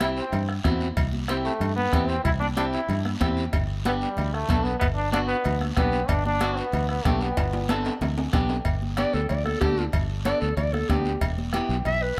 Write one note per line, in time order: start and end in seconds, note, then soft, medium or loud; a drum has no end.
0.00 0.20 C2 medium
0.00 0.23 C4 medium
0.00 0.24 E4 medium
0.00 0.09 E4 medium
0.00 0.24 G4 medium
0.00 bombo rim medium
0.00 cowbell medium
0.00 high conga medium
0.00 short guiro medium
0.17 0.47 C4 medium
0.17 short guiro medium
0.32 0.58 G2 medium
0.32 cowbell medium
0.32 high conga soft
0.32 low conga medium
0.32 long guiro medium
0.49 bombo rim medium
0.64 0.90 E2 medium
0.64 0.87 C4 medium
0.64 0.87 E4 medium
0.64 0.88 F#4 medium
0.64 bombo low medium
0.64 bombo rim medium
0.64 cowbell medium
0.64 high conga medium
0.64 low conga medium
0.64 low timbale medium
0.64 short guiro medium
0.80 short guiro medium
0.97 1.48 C2 medium
0.97 bombo low medium
0.97 cowbell loud
0.97 high conga soft
0.97 low conga medium
0.97 long guiro medium
1.13 high conga medium
1.28 1.36 C4 medium
1.28 1.51 C4 medium
1.28 1.52 E4 medium
1.28 1.52 G4 medium
1.28 bombo rim medium
1.28 cowbell medium
1.28 high conga medium
1.28 short guiro medium
1.44 1.74 A3 medium
1.44 short guiro medium
1.60 1.86 G2 medium
1.60 cowbell medium
1.60 high conga soft
1.60 low conga medium
1.60 long guiro medium
1.76 2.10 B3 loud
1.76 high conga medium
1.93 2.18 E2 medium
1.93 2.15 C4 medium
1.93 2.15 E4 medium
1.93 2.16 G4 medium
1.93 bombo low medium
1.93 bombo rim medium
1.93 cowbell medium
1.93 high conga medium
1.93 low timbale medium
1.93 short guiro medium
2.08 2.24 C4 medium
2.08 short guiro medium
2.24 2.76 C2 medium
2.24 2.32 E4 loud
2.24 bombo low medium
2.24 cowbell loud
2.24 high conga soft
2.24 low conga medium
2.24 long guiro medium
2.40 2.47 D4 loud
2.40 high conga medium
2.56 2.79 C4 medium
2.56 2.64 D4 medium
2.56 2.80 E4 medium
2.56 2.80 G4 medium
2.56 bombo rim medium
2.56 cowbell medium
2.56 high conga medium
2.56 short guiro medium
2.73 3.03 E4 medium
2.73 short guiro medium
2.89 3.14 G2 medium
2.89 cowbell medium
2.89 high conga soft
2.89 low conga medium
2.89 long guiro medium
3.05 bombo rim medium
3.05 high conga medium
3.21 3.47 E2 loud
3.21 3.43 C4 medium
3.21 3.44 E4 medium
3.21 3.44 G4 medium
3.21 bombo low medium
3.21 bombo rim medium
3.21 cowbell medium
3.21 high conga medium
3.21 low timbale medium
3.21 short guiro medium
3.37 short guiro medium
3.53 4.05 G1 medium
3.53 bombo low medium
3.53 cowbell loud
3.53 high conga soft
3.53 low conga medium
3.53 long guiro medium
3.85 3.93 B3 medium
3.85 4.08 B3 medium
3.85 4.08 D4 medium
3.85 4.08 G4 medium
3.85 bombo rim medium
3.85 cowbell medium
3.85 high conga loud
3.85 short guiro medium
4.00 4.35 G3 medium
4.00 short guiro medium
4.17 4.43 D2 medium
4.17 cowbell medium
4.17 high conga soft
4.17 low conga medium
4.17 long guiro medium
4.33 4.65 A3 loud
4.33 bombo rim medium
4.49 4.75 B1 loud
4.49 4.72 B3 medium
4.49 4.72 D4 medium
4.49 4.72 A4 medium
4.49 bombo low medium
4.49 bombo rim medium
4.49 cowbell medium
4.49 high conga medium
4.49 low conga medium
4.49 short guiro medium
4.64 4.79 B3 medium
4.64 short guiro medium
4.80 5.33 G1 medium
4.80 4.87 B3 loud
4.80 bombo low medium
4.80 cowbell loud
4.80 high conga soft
4.80 low conga medium
4.80 long guiro medium
4.95 5.11 D4 loud
5.12 5.35 B3 medium
5.12 5.20 D4 loud
5.12 5.35 D4 medium
5.12 5.36 F#4 medium
5.12 bombo rim medium
5.12 cowbell medium
5.12 high conga medium
5.12 short guiro medium
5.27 5.58 B3 medium
5.27 short guiro medium
5.44 5.71 D2 medium
5.44 cowbell medium
5.44 high conga soft
5.44 low conga medium
5.44 long guiro medium
5.61 bombo rim medium
5.61 high conga medium
5.76 6.03 B1 medium
5.76 6.10 B3 loud
5.76 5.99 B3 medium
5.76 6.00 D4 medium
5.76 6.00 G4 medium
5.76 bombo low medium
5.76 bombo rim medium
5.76 cowbell medium
5.76 high conga medium
5.76 low conga medium
5.76 low timbale medium
5.76 short guiro medium
5.92 short guiro medium
6.08 6.60 G1 medium
6.08 6.25 D4 loud
6.08 bombo low medium
6.08 cowbell loud
6.08 high conga soft
6.08 low conga medium
6.08 long guiro medium
6.26 6.59 D4 loud
6.26 high conga medium
6.41 6.64 B3 medium
6.41 6.64 D4 medium
6.41 6.64 F#4 medium
6.41 bombo rim medium
6.41 cowbell medium
6.41 high conga medium
6.41 short guiro medium
6.57 6.89 B3 medium
6.57 short guiro medium
6.72 6.99 D2 medium
6.72 cowbell medium
6.72 high conga soft
6.72 low conga medium
6.72 long guiro medium
6.89 7.06 B3 medium
6.89 bombo rim medium
7.05 7.31 B1 medium
7.05 7.23 A3 medium
7.05 7.28 B3 medium
7.05 7.28 D4 medium
7.05 7.28 G4 medium
7.05 bombo low medium
7.05 bombo rim medium
7.05 cowbell medium
7.05 high conga medium
7.05 low conga medium
7.05 low timbale medium
7.05 short guiro medium
7.21 7.70 B3 medium
7.21 short guiro medium
7.37 7.89 G1 medium
7.37 bombo low medium
7.37 cowbell loud
7.37 high timbale loud
7.37 long guiro medium
7.53 high conga medium
7.53 high timbale medium
7.69 7.92 B3 medium
7.69 7.92 D4 medium
7.69 7.92 A4 medium
7.69 bombo rim medium
7.69 cowbell medium
7.69 high conga loud
7.69 low timbale medium
7.69 short guiro medium
7.85 low timbale medium
7.85 short guiro medium
8.01 8.27 D2 medium
8.01 cowbell medium
8.01 high conga soft
8.01 low conga medium
8.01 low timbale medium
8.01 long guiro medium
8.18 low timbale medium
8.33 8.59 B1 medium
8.33 8.56 B3 medium
8.33 8.56 D4 medium
8.33 8.56 G4 medium
8.33 bombo low medium
8.33 bombo rim medium
8.33 cowbell medium
8.33 high conga medium
8.33 low conga medium
8.33 low timbale medium
8.33 short guiro medium
8.49 low timbale medium
8.49 short guiro medium
8.65 9.04 G1 loud
8.65 bombo low medium
8.65 cowbell medium
8.65 high conga soft
8.65 long guiro medium
8.82 high conga medium
8.97 9.20 B3 medium
8.97 9.20 D4 medium
8.97 9.20 G4 medium
8.97 9.16 D5 loud
8.97 bombo rim medium
8.97 cowbell medium
8.97 high conga medium
8.97 short guiro medium
9.13 9.27 D2 medium
9.13 9.28 A4 medium
9.13 short guiro medium
9.29 9.55 D2 medium
9.29 9.45 D5 medium
9.29 cowbell medium
9.29 high conga soft
9.29 low conga medium
9.29 long guiro medium
9.45 9.60 A4 medium
9.45 bombo rim medium
9.45 high conga medium
9.60 9.87 D2 medium
9.60 9.84 B3 medium
9.60 9.84 D4 medium
9.60 9.92 G4 medium
9.60 9.85 A4 medium
9.60 bombo low medium
9.60 bombo rim medium
9.60 cowbell medium
9.60 high conga medium
9.60 low timbale medium
9.60 short guiro medium
9.77 short guiro medium
9.92 10.32 G1 loud
9.92 bombo low medium
9.92 cowbell medium
9.92 high conga soft
9.92 low conga medium
9.92 long guiro medium
10.25 10.48 B3 medium
10.25 10.49 D4 medium
10.25 10.49 A4 medium
10.25 10.41 D5 loud
10.25 bombo rim medium
10.25 cowbell medium
10.25 high conga medium
10.25 short guiro medium
10.41 10.55 D2 medium
10.41 10.56 A4 medium
10.41 short guiro medium
10.57 10.83 D2 medium
10.57 10.75 D5 medium
10.57 cowbell medium
10.57 high conga soft
10.57 low conga medium
10.57 long guiro medium
10.73 10.91 A4 medium
10.73 bombo rim medium
10.73 high conga medium
10.89 11.15 D2 medium
10.89 11.12 B3 medium
10.89 11.12 D4 medium
10.89 11.21 G4 medium
10.89 11.13 G4 medium
10.89 bombo low medium
10.89 bombo rim medium
10.89 cowbell medium
10.89 high conga medium
10.89 low conga medium
10.89 low timbale medium
10.89 short guiro medium
11.05 short guiro medium
11.21 11.60 E1 loud
11.21 bombo low medium
11.21 cowbell loud
11.21 high conga soft
11.21 long guiro medium
11.38 high conga medium
11.53 11.76 B3 medium
11.53 11.76 E4 medium
11.53 11.76 G4 medium
11.53 bombo rim medium
11.53 cowbell medium
11.53 high conga medium
11.53 short guiro medium
11.69 11.82 B1 medium
11.69 short guiro medium
11.85 12.11 B1 medium
11.85 12.04 E5 loud
11.85 cowbell medium
11.85 high conga soft
11.85 low conga medium
11.85 long guiro medium
12.03 12.19 B4 medium